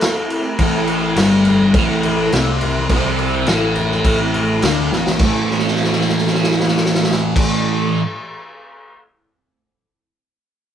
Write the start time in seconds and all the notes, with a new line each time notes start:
Already playing: A3 C4 E4 A4
0.01 snare, crash
0.30 crash
0.59 A1 A2 A3, kick, crash
0.88 crash
1.16 G1 G2 G3, snare, crash
1.45 crash, high conga, low conga
1.61 high conga
1.74 A1 A2 A3, kick, crash
2.03 crash, high conga
2.32 C2 C3 C4, snare, crash
2.61 crash, low conga
2.78 high conga
2.89 C2 C3 C4, kick, crash
3.06 high conga
3.19 crash
3.46 A1 A2 A3, snare, crash
3.76 crash, high conga, low conga
3.91 snare, high conga
4.05 kick, crash
4.34 crash, high conga
4.62 D2 D3 D4, snare, crash, high conga
4.78 high conga
4.92 A1 A2 A3, snare, low conga
5.07 snare, low conga
5.19 A1 A2 E3 A3 C4 E4 A4, kick, crash, high conga
5.25 A3
5.50 snare
5.59 snare
5.68 snare
5.75 snare
5.84 snare
5.92 snare
6.01 snare
6.09 snare
6.18 snare
6.27 snare
6.34 snare
6.43 snare
6.51 snare
6.60 snare
6.68 snare
6.77 snare
6.85 snare
6.95 snare
7.03 snare
7.11 snare
7.36 kick, crash